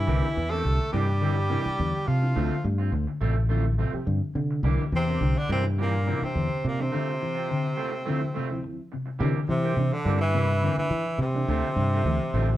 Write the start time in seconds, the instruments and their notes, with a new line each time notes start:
Already playing: baritone saxophone E3, trombone E3, tenor saxophone E4
0.07 fingered electric bass C2, clean electric guitar D3 E3 A#3 C4 G4, reed electric piano A#3 D4 E4
0.36 fingered electric bass E2, clean electric guitar E3, muted clean electric guitar stroke
0.50 baritone saxophone A3, trombone A3, clean electric guitar A#3 C4 G4, reed electric piano D4 E4, tenor saxophone A4
0.65 fingered electric bass C2, clean electric guitar D3, reed electric piano A#3 D4 G4, muted clean electric guitar stroke
0.79 muted clean electric guitar stroke
0.92 fingered electric bass G2, clean electric guitar C3 E3 A#3 C4 G4, baritone saxophone G3, trombone G3, reed electric piano A#3 D4 E4, tenor saxophone G4
1.08 muted clean electric guitar stroke
1.21 clean electric guitar D3 E3 A#3 C4 G4, reed electric piano A#3 D4 G4
1.35 muted clean electric guitar stroke
1.49 clean electric guitar C3 E3 A#3 C4 G4, reed electric piano A#3 D4 E4
1.64 muted clean electric guitar stroke, muted fingered electric bass stroke
1.79 fingered electric bass E2, clean electric guitar D3
2.06 clean electric guitar C3, fingered electric bass C3, baritone saxophone F3, trombone F3, tenor saxophone F4, muted clean electric guitar stroke
2.22 reed electric piano A#3 D4 E4, muted clean electric guitar stroke
2.35 fingered electric bass D2, clean electric guitar D3 A3 C4 F4
2.64 fingered electric bass G2, clean electric guitar A3, muted clean electric guitar stroke
2.78 clean electric guitar C4 F4
2.92 fingered electric bass D2, clean electric guitar D3, muted clean electric guitar stroke
3.07 muted clean electric guitar stroke
3.21 fingered electric bass A1, clean electric guitar C3 A3 C4 F4
3.36 muted clean electric guitar stroke
3.49 clean electric guitar D3 A3 F4, reed electric piano F3 C4 E4, muted clean electric guitar stroke
3.65 muted clean electric guitar stroke
3.79 clean electric guitar C3 A3 C4 F4
3.92 reed electric piano F3 C4 G4, muted clean electric guitar stroke, muted fingered electric bass stroke
4.07 fingered electric bass G2, clean electric guitar D3
4.35 clean electric guitar C3, fingered electric bass D3, muted clean electric guitar stroke
4.51 muted clean electric guitar stroke
4.63 fingered electric bass C2, clean electric guitar D3 E3 A#3 G4, reed electric piano E3 A#3 D4, muted clean electric guitar stroke
4.92 fingered electric bass E2, trombone C3, baritone saxophone C3, clean electric guitar E3, tenor saxophone C4, muted clean electric guitar stroke
5.06 reed electric piano A#3 D4, clean electric guitar A#3 C4 G4
5.20 fingered electric bass C2, clean electric guitar D3, reed electric piano E3 A#3 D4, muted clean electric guitar stroke
5.35 baritone saxophone D3, trombone D3, tenor saxophone D4, muted clean electric guitar stroke
5.48 fingered electric bass G2, clean electric guitar C3 E3 A#3 C4 G4, baritone saxophone C3, trombone C3, reed electric piano E3 A#3 D4, tenor saxophone C4
5.64 muted clean electric guitar stroke
5.77 baritone saxophone A#2, trombone A#2, reed electric piano E3 A#3 D4, clean electric guitar E3 C4 G4, muted clean electric guitar stroke
5.82 tenor saxophone A#3
5.93 muted clean electric guitar stroke
6.05 clean electric guitar C3 E3 A#3 C4 G4, reed electric piano E3 A#3 D4
6.21 trombone C3, baritone saxophone C3, tenor saxophone C4, muted clean electric guitar stroke, muted fingered electric bass stroke
6.35 fingered electric bass E2, clean electric guitar D3
6.64 baritone saxophone A#2, trombone A#2, fingered electric bass C3, clean electric guitar C3, tenor saxophone A#3, muted clean electric guitar stroke
6.79 trombone C3, baritone saxophone C3, reed electric piano E3 A#3 D4, tenor saxophone C4, muted clean electric guitar stroke
6.92 clean electric guitar D3 A3 C4 F4
7.20 clean electric guitar E3, muted clean electric guitar stroke
7.35 clean electric guitar C4 F4
7.48 clean electric guitar D3, muted clean electric guitar stroke
7.64 muted clean electric guitar stroke
7.77 clean electric guitar A3 C4 F4
7.92 muted clean electric guitar stroke
8.05 reed electric piano D2 F3 C4 E4, clean electric guitar D3 A3 C4 F4
8.20 muted clean electric guitar stroke
8.34 clean electric guitar C3 A3 C4 F4
8.49 reed electric piano D2 F3 C4 E4, muted clean electric guitar stroke
8.64 muted clean electric guitar stroke
8.92 clean electric guitar C3, muted clean electric guitar stroke
9.06 muted clean electric guitar stroke
9.19 fingered electric bass C3, clean electric guitar D3 E3 A#3 C4 G4, reed electric piano E3 A#3 D4
9.48 clean electric guitar C3, tenor saxophone C3, baritone saxophone C3, fingered electric bass E3, trombone C4, muted clean electric guitar stroke
9.63 reed electric piano A#3 D4, clean electric guitar A#3 C4 G4
9.77 fingered electric bass C3, reed electric piano E3 A#3 D4, clean electric guitar E3, muted clean electric guitar stroke
9.93 baritone saxophone D3, tenor saxophone D3, trombone D4, muted clean electric guitar stroke
10.05 fingered electric bass G2, clean electric guitar D3 E3 A#3 C4 G4, reed electric piano E3 A#3 D4
10.21 tenor saxophone E3, baritone saxophone E3, trombone E4, muted clean electric guitar stroke
10.33 clean electric guitar C3 E3 A#3 C4 G4, reed electric piano E3 A#3 D4
10.49 muted clean electric guitar stroke
10.62 clean electric guitar D3 E3 A#3 C4, reed electric piano E3 A#3 D4
10.77 tenor saxophone E3, baritone saxophone E3, trombone E4, muted fingered electric bass stroke, muted clean electric guitar stroke
10.91 fingered electric bass E3
11.18 fingered electric bass C3, clean electric guitar C3, tenor saxophone C3, baritone saxophone C3, muted clean electric guitar stroke
11.23 trombone C4
11.34 reed electric piano E3 A#3 D4, muted clean electric guitar stroke
11.48 fingered electric bass D2, clean electric guitar D3 F3 A3 C4 F4
11.76 fingered electric bass G2, clean electric guitar C3, muted clean electric guitar stroke
11.92 clean electric guitar A3 C4 F4
12.05 fingered electric bass D2, clean electric guitar E3, muted clean electric guitar stroke
12.20 muted clean electric guitar stroke
12.34 fingered electric bass A1, clean electric guitar D3 F3 A3 C4 F4
12.49 muted clean electric guitar stroke